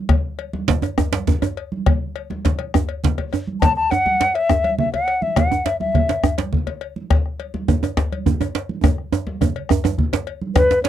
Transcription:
0.09 bombo rim, bombo low, cowbell, djembe slap, djembe tone, low conga, djembe bass
0.39 cowbell, high conga
0.53 djembe slap, djembe tone, high conga
0.68 bombo rim, bombo low, cowbell, djembe slap, high conga, low conga
0.82 cowbell, djembe tone
0.98 bombo rim, djembe slap, djembe tone, djembe bass
1.12 cowbell, djembe slap, high conga
1.27 bombo low, high conga, djembe tone, low conga
1.42 cowbell, djembe slap, djembe tone
1.57 cowbell
1.72 high conga
1.86 bombo rim, bombo low, cowbell, djembe slap, djembe tone, djembe bass, low conga
2.16 cowbell, djembe slap
2.30 djembe slap, high conga, djembe tone
2.45 bombo rim, bombo low, cowbell, djembe slap, low conga
2.59 bombo rim, cowbell, djembe slap, high conga
2.74 bombo rim, djembe slap, djembe tone, djembe bass
2.89 cowbell
3.04 bombo rim, bombo low, djembe slap, high conga, low conga
3.18 bombo rim, cowbell, djembe slap, djembe tone, high conga
3.33 bombo rim, cowbell, djembe tone
3.47 high conga
3.61 A5, bombo rim, bombo low, cowbell, djembe slap, djembe tone, low conga, djembe bass
3.76 A5, bombo rim
3.91 F#5, cowbell, high conga, djembe tone
4.06 djembe slap, djembe tone, high conga
4.21 bombo rim, cowbell, djembe slap, high conga
4.35 E5, cowbell
4.50 bombo rim, djembe slap, djembe tone, djembe bass
4.64 cowbell, high conga
4.78 E5, high conga, low conga
4.94 F#5, cowbell, djembe slap, djembe tone
5.08 cowbell
5.22 E5, high conga
5.36 F#5, bombo rim, bombo low, cowbell, djembe slap, djembe tone, low conga, djembe bass
5.51 bombo rim, djembe tone
5.65 E5, cowbell, djembe slap, high conga
5.80 E5, djembe slap, high conga, djembe tone
5.94 bombo rim, bombo low, cowbell, high conga, low conga
6.09 cowbell, djembe slap
6.23 bombo rim, djembe slap, djembe tone, djembe bass
6.38 cowbell, djembe slap, high conga
6.53 bombo low, high conga, low conga
6.67 cowbell, djembe slap, djembe tone
6.81 cowbell
6.96 high conga
7.10 bombo rim, bombo low, cowbell, djembe slap, djembe tone, djembe bass, low conga
7.26 bombo rim
7.40 cowbell, high conga
7.54 djembe slap, djembe tone, high conga
7.68 bombo rim, bombo low, cowbell, djembe tone, high conga, low conga
7.83 cowbell, djembe tone
7.97 bombo rim, djembe slap, djembe tone, djembe bass
8.12 cowbell, high conga
8.26 bombo low, djembe tone, high conga, low conga
8.41 cowbell, djembe slap, djembe tone
8.55 cowbell, djembe slap
8.69 high conga
8.84 bombo rim, bombo low, cowbell, djembe slap, djembe tone, djembe bass, low conga
8.98 bombo rim, high conga
9.12 cowbell, djembe tone, high conga
9.27 djembe slap, djembe tone, high conga
9.41 bombo rim, bombo low, cowbell, djembe tone, low conga
9.56 cowbell, djembe slap
9.69 bombo rim, djembe slap, djembe tone, djembe bass
9.84 bombo rim, cowbell, high conga, djembe tone
9.98 bombo low, high conga, low conga
10.13 cowbell, djembe slap, high conga, djembe tone
10.27 cowbell, djembe slap
10.42 high conga
10.55 B4, bombo rim, bombo low, cowbell, djembe slap, djembe tone, low conga, djembe bass
10.70 djembe slap, djembe tone
10.84 C#5, cowbell, djembe slap

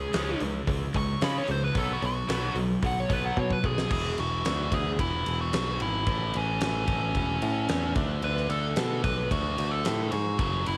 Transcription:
Already playing: C#3 G#3 G#4
0.13 C#2 C#3 G#3 C#4, snare, open hi-hat
0.40 C#2 C#3 G#3, open hi-hat
0.67 C#2 C#3 G#3, kick, open hi-hat
0.94 C#2 C#3 G#3 C#6, kick, open hi-hat
1.21 C#3 G#3 C#4 B5, snare, open hi-hat
1.38 C#5
1.48 C#2 C#3 G#3 C5, open hi-hat
1.64 B4
1.75 B1 B2 F#3 B3, kick, open hi-hat
1.79 A4
1.93 F#4
2.02 B1 B2 F#3, open hi-hat
2.06 F#4
2.28 B1 B2 F#3 B3, snare, open hi-hat
2.55 B1 B2 F#3, open hi-hat
2.82 B1 B2 F#3 F#5, kick, open hi-hat
3.00 C#5
3.09 B1 B2 F#3 B3, kick, open hi-hat
3.13 B4
3.25 F#5
3.37 B2 F#3 C#5, kick
3.50 B4, kick
3.64 B1 B2 F#3 G#4, kick
3.78 snare
3.90 E1 E2 B2 E3 G#4, kick, crash
4.18 E1 F#4, ride
4.45 D2 F#4, snare, ride
4.72 D2 G#4, kick, ride
4.99 E1 E4, kick, ride
5.26 E1, ride
5.41 F#4
5.53 B1, snare, ride
5.80 G#1 E4, ride
6.06 A1 A2 E3 A3 E4, kick, ride
6.34 A1 C#4, ride
6.61 A1 C#4, snare, ride
6.88 A1, kick, ride
7.15 E1, kick, ride
7.42 A2, ride
7.69 E2, snare, ride
7.95 D2 D3 A3 D4, kick, ride
8.22 D2 B4, ride
8.37 snare
8.49 D2 A4, ride
8.76 B2, snare, ride
9.04 B1 B4, kick, ride
9.31 D2 F#4, kick, ride
9.58 D2, ride
9.71 A4
9.85 A2, snare, ride
10.11 G#2 F#4, ride
10.39 F#1 F#2 C#3 F#3 F#4, kick, ride
10.66 F#1 E4, ride

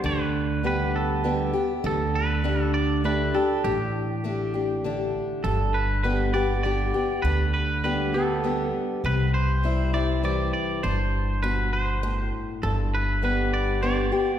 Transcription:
0.04 D2 D3 B4
0.63 D3 G3 B3 G4 B4
0.96 A4
1.24 D3 G3 B3 G4
1.53 B3 G4
1.84 D2 D3 A4
2.15 B4
2.44 D3 A3 D4 G4
2.62 A4
2.74 D5
3.04 D3 A3 D4 G4 B4
3.34 D4 G4 A4
3.64 A1 A2 G4
4.24 D3 A3 D4 G4
4.54 D4 G4
4.84 D3 A3 D4 G4
5.44 G1 G2 A4
5.74 B4
6.03 D3 G3 B3 G4 B4
6.34 B3 G4 D5
6.63 D3 G3 B3 G4 D5
6.94 B3 G4
7.22 D2 D3 B4
7.54 B4
7.84 D3 G3 B3 G4 B4
8.14 B3 G4 A4
8.44 D3 G3 B3 G4
9.04 C2 C3 B4
9.34 C5
9.63 E3 G3 C4 E4
9.93 C4 E4 D5
10.23 E3 G3 C4 E4 D5
10.53 D5
10.83 G1 G2 C5
11.43 B2 B4
11.73 C5
12.03 A2
12.63 G1 G2 A4
12.95 B4
13.22 D3 G3 B3 G4 B4
13.54 D5
13.82 D3 G3 B3 G4 D5
14.12 B3 G4

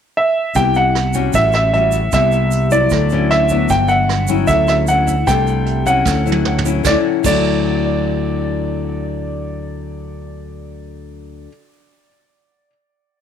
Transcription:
0.17 E5
0.55 C2 C3 B3 E4 G4 G5, kick, closed hi-hat, shaker
0.74 F#5, closed hi-hat, shaker
0.95 cross-stick, closed hi-hat
1.13 G3 C#4 F#4, kick, closed hi-hat, shaker
1.33 A1 A2 E5, kick, closed hi-hat, shaker
1.52 E5, cross-stick, closed hi-hat, shaker
1.74 G3 C#4 F#4 E5, closed hi-hat
1.92 kick, closed hi-hat, shaker
2.12 C2 C3 G3 B3 E4 E5, kick, cross-stick, closed hi-hat, shaker
2.32 closed hi-hat, shaker
2.51 closed hi-hat, shaker
2.71 F#3 E4 D5, kick, closed hi-hat, shaker
2.90 D2 D3, kick, cross-stick, closed hi-hat, shaker
3.10 F#3 C#4 E4, closed hi-hat, shaker
3.31 E5, cross-stick, closed hi-hat
3.49 F#3 B3 D4, kick, closed hi-hat, shaker
3.69 G1 G2 G5, kick, closed hi-hat, shaker
3.88 F#5, closed hi-hat, shaker
4.09 cross-stick, closed hi-hat
4.27 F#3 C#4 E4, kick, closed hi-hat, shaker
4.47 D2 D3 E5, kick, closed hi-hat, shaker
4.67 E5, cross-stick, closed hi-hat, shaker
4.87 F#3 C#4 E4 F#5, closed hi-hat, shaker
5.07 kick, closed hi-hat, shaker
5.27 C2 C3 G3 A3 D4 G5, kick, cross-stick, closed hi-hat, shaker
5.47 closed hi-hat, shaker
5.66 closed hi-hat
5.86 F#3 C#4 E4 F#5, kick, closed hi-hat, shaker
6.05 D2 D3, kick, snare, shaker
6.26 F#3 C#4 E4, shaker
6.32 high tom
6.45 mid tom
6.58 mid tom
6.65 F#3 C#4 E4, shaker
6.83 D2 D3 F#3 D5, kick, snare, shaker
6.87 C#4 E4
7.23 D2 D3 F#3 D5, kick, crash, shaker
7.28 E4

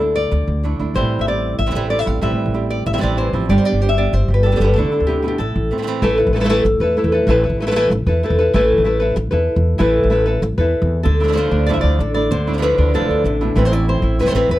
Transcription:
Already playing: D2 D3 A4
0.00 A3 D4 E4
0.16 D5
0.31 D2, muted nylon-string guitar stroke
0.48 D2
0.63 D3 A3 D4 E4
0.79 D2 A3 D4 E4
0.94 A1 A2 E3 G3 C4 E4 C5
1.02 A2
1.19 A1 E5
1.27 G3 C4 E4 D5
1.59 A1 E5, muted nylon-string guitar stroke
1.66 E3 G3 C4 E4
1.71 E3 G3 C4 E4
1.75 A1 E3 G3 C4 E4 A4
1.90 E3 G3 C4 E4 D5
1.99 E5
2.06 A1 G3 C4 E4 F5
2.21 A1 A2 E3 G3 C4 E4 E5
2.31 A2
2.46 A1
2.54 G3 C4 E4 G4
2.70 D5
2.86 A1 E5, muted nylon-string guitar stroke
2.93 E3 G3 C4 E4 E5
2.98 E3 G3 C4 E4 D5
3.02 A1 E3 G3 C4 E4
3.17 E3 G3 C4 E4 C5
3.33 A1 F3 G3 C4 E4
3.49 G1 D3 G3 B3 D4 G4 D5
3.57 G2 C5
3.65 B3 D4 G4 D5
3.73 G1
3.81 B3 D4 G4 C5
3.89 E5
3.97 B3 D4 G4 D5
4.13 G1 C5, muted nylon-string guitar stroke
4.28 G1 G4
4.34 B4
4.43 G3 B3 D4 G4 A4
4.52 G3 B3 D4 G4
4.56 G1 G3 B3 D4 G4
4.60 D3 G3 B3 D4 G4 B4
4.74 D2 D3 A3 D4 A4
4.78 D4 E4
4.84 D3
4.92 A3 D4 E4
5.00 D2
5.07 C3 A3 D4 E4 G4
5.22 B2 A3 D4 E4
5.28 G4
5.38 A1 A2 A4, muted nylon-string guitar stroke
5.56 A1
5.71 E3 A3 C4 E4
5.78 E3 A3 C4 E4
5.82 E3 A3 C4 E4
5.87 E3 A3 C4 E4
6.02 A1 E3 A3 E4 A4 B4
6.18 E4 A4 B4
6.27 A1
6.33 A3 E4 A4 B4
6.40 A3 E4 A4 B4
6.44 A3 E4 A4 B4
6.49 E3 A3 E4 A4 B4
6.65 A1, muted nylon-string guitar stroke
6.80 E2 E4 A4 B4
6.97 A3 E4 A4 B4
7.04 E2
7.12 E4 A4 B4
7.27 A1 E3 A3 E4 A4 B4
7.43 E4 A4 B4
7.50 A1
7.60 A3 E4 A4 B4
7.67 A3 E4 A4 B4
7.71 A3 E4 A4 B4
7.76 E3 A3 E4 A4 B4
7.90 A1, muted nylon-string guitar stroke
8.06 E2 E4 A4 B4
8.23 A3 E4 A4 B4
8.30 E2
8.39 E4 A4 B4
8.54 A1 E3 A3 E4 A4 B4
8.78 A1
8.84 A3 E4 A4 B4
9.00 E4 A4 B4
9.16 A1, muted nylon-string guitar stroke
9.31 E2 E4 A4 B4
9.56 E2
9.78 A1 E3 A3 E4 A4 B4
10.03 A1
10.10 A3 E4 A4 B4
10.26 E4 A4 B4
10.42 A1, muted nylon-string guitar stroke
10.58 E2 E4 A4 B4
10.82 E2
11.03 D2 D3 A4, muted nylon-string guitar stroke
11.20 F3 A3 D4 E4
11.24 F3 D4 E4
11.29 F3 A3 D4 E4
11.33 D3 A3 D4 E4 C5
11.37 F3 A3 D4 E4
11.51 D2 D4
11.67 D3 F3 A3 D4 D5
11.71 E4 E5
11.76 D2
11.81 D2 D5
11.99 A1 A4, muted nylon-string guitar stroke
12.14 A3 D4 E4 D5
12.31 D2 D3 C5, muted nylon-string guitar stroke
12.47 A3 D4 E4
12.53 F3 A3 D4 E4
12.58 F3 A3 D4 E4
12.62 D3 F3 A3 D4 E4 B4
12.78 D2 D4
12.94 D3 F3 A3 D4 E4 A4
13.01 D2
13.09 D2 D4
13.24 A1 C3, muted nylon-string guitar stroke
13.41 B2 A3 D4 E4
13.55 A1 A2 E3 A3 C4 E4 B4
13.65 C5
13.71 A3 C4 E4 D5
13.88 A3 C4 E4 C5
14.02 A1 E4
14.19 E3 C4 E4 B4, muted nylon-string guitar stroke
14.25 A1 E3 A3 C4 E4 C5
14.30 A1 E3 A3 C4 E4
14.35 E3 A3 C4 E4 B4
14.49 E2 E3 A3 C4 E4 B4

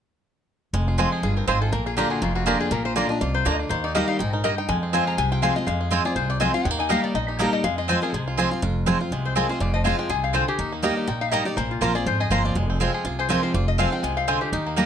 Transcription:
0.73 F1 F2 G#3
0.88 F4
0.98 F3 G#3 C4 F4 C5 G#5
1.12 G#4
1.23 G1 G2 F4 G#4
1.37 C4 A#4
1.47 G#1 G#2 C4 F4 G#4 C5 G#5
1.61 F4 A4
1.72 A#1 A#2 A#3 A#4
1.86 F4 G#4
1.97 D3 A#3 D4 F4 G4 D5 A#5
2.10 F#4 G#4
2.22 F1 F2 A#3 F4
2.35 F4 F#4
2.46 D3 A#3 D4 F4 G4 G#4 D5 A#5
2.60 F4 G#4
2.71 A#1 A#2 A#3 A#4
2.85 F4 C5
2.96 D3 A#3 D4 F4 D5 A#5
3.09 D4 F4 D#5
3.21 C2 C3 F4 D5
3.34 A#3 C5
3.45 D2 D3 A#3 D4 F4 D5 A#5
3.53 D#5
3.59 F4 D5
3.69 D#2 D#3 A#3 C5
3.84 D#4 D5
3.95 G3 A#3 D#4 G4 D#5 A#5
4.08 D#4 F5
4.19 A#1 G#2 D#4 G5
4.33 D#4 A#4
4.44 G2 A#3 D#4 G4 D#5 A#5
4.58 D#4 G5
4.69 F2 G#3 G#5
4.83 C4
4.93 F3 G#3 C4 F4 C5 G#5
5.07 G#4 A#5
5.18 C2 C3 C4 G#5
5.32 F4 G5
5.42 F3 G#3 C4 F4 G#4 C5 F5 G#5
5.56 G#3 C4 F4 D#5
5.66 F2 G#3 F5
5.81 F4
5.91 F3 G#3 C4 F4 C5 G#5
6.05 C4 F4 G#4 D5
6.16 C2 C3 F4 C5
6.30 C4 D5
6.40 F3 G#3 C4 F4 G#4 C5 D#5 G#5
6.54 C4 F4 F5
6.65 D#2 D#3 G#3 G5
6.71 A#3
6.79 D#4 G#5
6.89 G3 A#3 D#4 G4 D#5 F5 A#5
7.04 D#4 D5
7.15 A#1 A#2 D#4 D#5
7.28 D#4 G4
7.39 G3 A#3 D#4 G4 A#4 D#5 A#5
7.53 A#3 D#5
7.64 F2 G#3 F5
7.78 F4 D#5
7.88 F3 G#3 C4 F4 C5 G#5
8.02 C4 F4 G#4 A#4
8.13 C2 C3 G#3 G#4
8.28 F4
8.37 F3 G#3 C4 F4 G#4 C5 G#5
8.51 C4 F4
8.62 F1 F2 F4
8.86 F3 G#3 C4 F4 C5 G#5
9.01 C4 F4
9.11 C2 C3 G#3
9.25 C4 C5
9.36 F3 G#3 C4 F4 A#4 C5 G#5
9.49 C4 F4 C5
9.60 F1 F2 F4 D5
9.74 F3 D#5
9.84 F3 G#3 C4 F4 C5 F5 G#5
9.99 G#3 G5
10.09 C2 C3 G#4 G#5
10.24 C4 F5
10.33 D3 C4 F4 C5 G#5
10.48 G4 G#4
10.59 D#2 D#3 D#4
10.72 A#3
10.83 G3 A#3 D#4 G4 D#5 A#5
10.97 D#4
11.07 A#1 A#2 A#3 G5
11.21 D#4 F5
11.32 G3 A#3 D#4 G4 D#5 A#5
11.45 D#4 G4 D5
11.57 A#1 A#2 A#3 C5
11.71 F4
11.81 A#1 F3 A#3 C4 F4 A#4 C5 A#5
11.95 C4 F4 G#4 D5
12.06 G#1 F2 F4 C5
12.20 G#4 D#5
12.30 G1 F3 A#3 C4 F4 C5 F5 A#5
12.45 F4 D5
12.55 F1 F2 G#3
12.70 C4
12.80 F3 G#3 C4 F4 C5 G#5
12.94 G#4
13.04 C2 C3 F4
13.19 G#4 C5
13.29 F3 G#3 C4 F4 A#4 C5 G#5
13.43 F4 C5
13.54 F1 F2 F4 D5
13.68 D#5
13.78 F3 G#3 C4 F4 C5 F5 G#5
13.92 F4 G5
14.03 C2 C3 G#3 G#5
14.17 C4 F5
14.28 D3 G#3 C4 F4 C5 G#5
14.41 F4 G4
14.52 D#2 D#3 D#4
14.67 A#3
14.76 G3 A#3 D#4 G4 D#5 A#5

